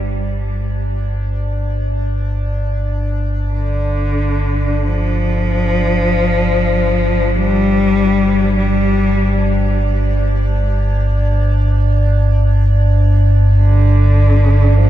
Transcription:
Already playing: synth drone G1 G2 D4
3.54 cello D3
4.82 cello F3
7.34 cello G3
8.56 cello G3
13.56 cello D3
14.76 cello F3

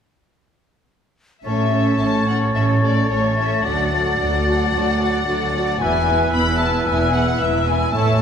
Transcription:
1.43 double bass section A1, cello section A2, viola section A3 C#4, violin section A4 C#5 E5, oboe C#5, flute A6
1.72 viola section A3 C#4, violin section A4 C#5
1.99 double bass section A1, cello section A2, viola section A3 C#4, violin section A4 C#5 A5
2.28 viola section A3 C#4, violin section A4 C#5 F#5
2.54 double bass section A1, cello section A2, viola section A3 C#4, violin section A4 C#5 E5
2.82 viola section A3 C#4, violin section A4 C#5 D5
3.09 double bass section A1, cello section A2, viola section A3 C#4, violin section A4 C#5
3.37 viola section A3 C#4, violin section A4 C#5 E5
3.63 double bass section D2, cello section D2, viola section F#3 F#4, violin section A4 D5 F#5, oboe D5
3.92 viola section F#3 F#4, violin section A4 D5
4.18 double bass section D2, cello section D2, viola section F#3 F#4, violin section A4 D5
4.46 viola section F#3 F#4, violin section A4 D5
4.72 cello section D2, double bass section D2, viola section F#3 F#4, violin section A4 D5
4.99 viola section F#3 F#4, violin section A4 D5
5.26 cello section D2, double bass section D2, viola section F#3 F#4, violin section A4 D5
5.53 viola section F#3 F#4, violin section A4 D5
5.80 double bass section E1, cello section E2, viola section B3 E4, violin section E4 B4 G#5, oboe B4, flute E6
6.07 viola section B3 E4, violin section E4 B4
6.33 double bass section E1, cello section E2, viola section B3 E4, violin section E4 B4 B5
6.59 viola section B3 E4, violin section E4 B4 A5
6.87 double bass section E1, cello section E2, viola section B3 E4, violin section E4 B4 G#5
7.13 viola section B3 E4, violin section E4 B4 F#5
7.40 double bass section E1, cello section E2, viola section B3 E4, violin section E4 B4 E5
7.67 viola section B3 E4, violin section E4 B4 G#5
7.94 double bass section A1, cello section A2, viola section A3 E4, violin section E4 C#5 A5, oboe C#5

